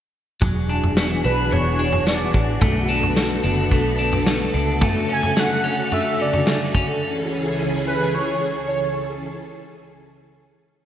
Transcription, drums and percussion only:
0.42 kick, floor tom
0.84 floor tom
0.97 snare
1.52 floor tom
1.93 floor tom
2.07 snare
2.34 kick
2.62 kick, floor tom
3.03 floor tom
3.17 snare
3.71 kick, floor tom
4.13 floor tom
4.27 snare
4.81 kick, floor tom
5.23 floor tom
5.37 snare
5.92 floor tom
6.33 floor tom
6.47 snare
6.75 kick, floor tom

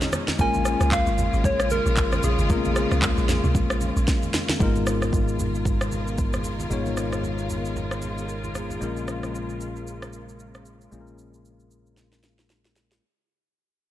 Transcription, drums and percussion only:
0.01 snare, high conga, shaker
0.12 cross-stick, high conga, shaker
0.28 snare, high conga, shaker
0.39 kick, shaker
0.54 high conga, shaker
0.65 cross-stick, shaker
0.81 cross-stick, high conga, shaker
0.92 kick, clap, low conga, shaker
1.07 shaker
1.18 high conga, low conga, shaker
1.33 shaker
1.44 kick, low conga, shaker
1.60 cross-stick, shaker
1.70 high conga, shaker
1.86 shaker
1.97 kick, clap, shaker
2.12 cross-stick, high conga, shaker
2.23 high conga, shaker
2.39 high conga, shaker
2.50 kick, shaker
2.65 high conga, shaker
2.76 cross-stick, shaker
2.91 cross-stick, high conga, shaker
3.02 kick, clap, low conga, shaker
3.17 shaker
3.29 snare, high conga, low conga, shaker
3.44 mid tom, shaker
3.55 kick, low conga, shaker
3.70 cross-stick, shaker
3.81 high conga, shaker
3.97 shaker
4.07 kick, snare, shaker
4.22 high conga, shaker
4.34 snare, high conga, shaker
4.49 snare, high conga, shaker
4.60 kick, low conga, shaker
4.75 high conga, shaker
4.87 cross-stick, shaker
5.02 cross-stick, high conga, shaker
5.12 kick, low conga, shaker
5.28 shaker
5.39 high conga, low conga, shaker
5.55 shaker
5.65 kick, low conga, shaker
5.81 cross-stick, shaker
5.92 high conga, shaker
6.07 shaker
6.18 kick, shaker
6.33 cross-stick, high conga, shaker
6.44 high conga, shaker
6.60 high conga, shaker
6.71 low conga, shaker
6.86 high conga, shaker
6.97 cross-stick, shaker
7.12 cross-stick, high conga, shaker
7.23 low conga, shaker
7.38 shaker
7.50 high conga, low conga, shaker
7.65 shaker
7.76 low conga, shaker
7.91 cross-stick, shaker
8.02 high conga, shaker
8.18 shaker
8.29 shaker
8.44 high conga, shaker
8.54 cross-stick, high conga, shaker
8.70 high conga, shaker
8.82 shaker
8.97 shaker
9.08 cross-stick, shaker
9.23 cross-stick, shaker
9.35 shaker
9.49 shaker
9.61 shaker
9.76 shaker
9.87 shaker
10.02 cross-stick, shaker
10.13 shaker
10.29 shaker
10.39 shaker
10.54 cross-stick, shaker
10.65 shaker
10.81 shaker
10.92 shaker
11.07 shaker
11.18 shaker
11.34 shaker
11.45 shaker
11.60 shaker
11.71 shaker
11.86 shaker
11.97 snare, shaker
12.13 snare, shaker
12.23 snare, shaker
12.39 snare, shaker
12.50 snare, shaker
12.65 snare, shaker
12.76 snare, shaker
12.92 snare, shaker

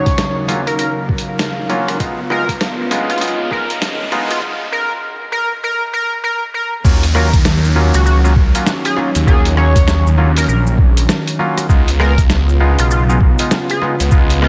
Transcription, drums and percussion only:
0.06 kick, snare, closed hi-hat
0.18 snare, closed hi-hat
0.49 closed hi-hat
0.67 closed hi-hat
0.79 closed hi-hat
1.09 kick
1.18 closed hi-hat
1.39 snare, closed hi-hat
1.70 closed hi-hat
1.88 cross-stick, closed hi-hat
2.00 kick, closed hi-hat
2.30 cross-stick
2.49 kick, closed hi-hat
2.61 snare, closed hi-hat
2.91 closed hi-hat
3.10 closed hi-hat
3.18 closed hi-hat
3.21 closed hi-hat
3.28 closed hi-hat
3.51 kick
3.70 closed hi-hat
3.82 snare, closed hi-hat
4.12 cross-stick, closed hi-hat
4.31 closed hi-hat
6.85 kick, crash, cabasa
7.03 closed hi-hat, cabasa
7.15 cross-stick
7.33 kick, closed hi-hat, cabasa
7.45 snare, cabasa
7.65 cabasa
7.94 closed hi-hat, cabasa
8.06 cabasa
8.25 cabasa
8.36 kick
8.55 closed hi-hat, cabasa
8.66 snare, cabasa
8.85 closed hi-hat, cabasa
8.97 cross-stick
9.15 closed hi-hat, cabasa
9.27 kick, cabasa
9.45 closed hi-hat, cabasa
9.57 cross-stick
9.76 kick, snare, closed hi-hat, cabasa
9.88 snare, cabasa
10.07 cabasa
10.37 closed hi-hat
10.38 closed hi-hat, cabasa
10.42 closed hi-hat
10.44 closed hi-hat
10.46 closed hi-hat, cabasa
10.67 cabasa
10.78 kick
10.97 closed hi-hat, cabasa
11.09 snare, cabasa
11.27 closed hi-hat, cabasa
11.58 cross-stick, closed hi-hat, cabasa
11.69 kick, cabasa
11.88 closed hi-hat, cabasa
12.00 cross-stick
12.18 kick, closed hi-hat, cabasa
12.30 snare, cabasa
12.49 cabasa
12.79 closed hi-hat, cabasa
12.91 cabasa
13.10 cabasa
13.21 kick
13.39 closed hi-hat, cabasa
13.51 snare, cabasa
13.70 closed hi-hat, cabasa
13.82 cross-stick
14.00 closed hi-hat, cabasa
14.11 kick, cabasa
14.30 closed hi-hat, cabasa
14.42 cross-stick

